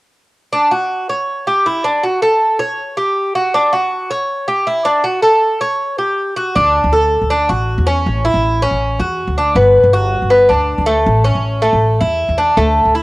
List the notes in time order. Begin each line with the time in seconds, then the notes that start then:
0.53 D4
0.71 F#4
1.09 C#5
1.47 G4
1.66 E4
1.84 D4
2.03 F#4
2.22 A4
2.59 C#5
2.97 G4
3.35 F#4
3.54 D4
3.73 F#4
4.11 C#5
4.48 G4
4.67 E4
4.85 D4
5.04 F#4
5.22 A4
5.61 C#5
5.98 G4
6.36 F#4
6.56 D2 D4
6.84 D2
6.93 A4
7.21 D2
7.30 D4
7.49 A1 F#4
7.78 E2
7.87 C#4
8.06 A1
8.25 E4
8.34 A1
8.62 C#4
8.71 A1
8.99 E2 F#4
9.27 D2
9.38 D4
9.55 G1 B3
9.84 G1
9.93 F#4
10.22 G1
10.30 B3
10.49 D2 D4
10.78 D2
10.86 A3
11.06 A1
11.24 C#4
11.35 A1
11.62 A3
11.73 A1
12.01 E2 E4
12.29 E2
12.38 D4
12.57 D2 A3
12.85 D2
12.95 E4